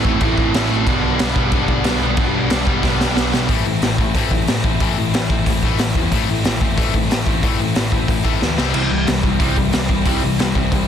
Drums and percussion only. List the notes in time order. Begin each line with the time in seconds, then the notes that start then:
0.05 kick
0.21 kick, crash
0.38 kick
0.54 snare, crash
0.87 kick, crash
1.19 snare, crash
1.36 kick
1.52 kick, crash
1.68 kick
1.84 snare, crash
2.17 kick, crash
2.50 snare, crash
2.67 kick
2.83 kick, snare
3.01 snare
3.17 snare
3.34 snare
3.49 kick, open hi-hat
3.82 snare, open hi-hat
3.98 kick
4.15 kick, open hi-hat
4.31 kick
4.47 snare, open hi-hat
4.64 kick
4.80 kick, open hi-hat
5.14 snare, open hi-hat
5.30 kick
5.46 kick, open hi-hat
5.63 kick
5.79 snare, open hi-hat
5.95 kick
6.12 kick, open hi-hat
6.45 snare, open hi-hat
6.61 kick
6.78 kick, open hi-hat
6.94 kick
7.11 snare, open hi-hat
7.27 kick
7.43 kick, open hi-hat
7.75 snare, open hi-hat
7.92 kick
8.08 kick, open hi-hat
8.25 kick
8.42 snare
8.58 snare
8.74 crash
9.07 snare, open hi-hat
9.23 kick
9.40 kick, open hi-hat
9.56 kick
9.73 snare, open hi-hat
9.89 kick
10.05 kick, open hi-hat
10.39 snare, open hi-hat
10.55 kick
10.72 kick, open hi-hat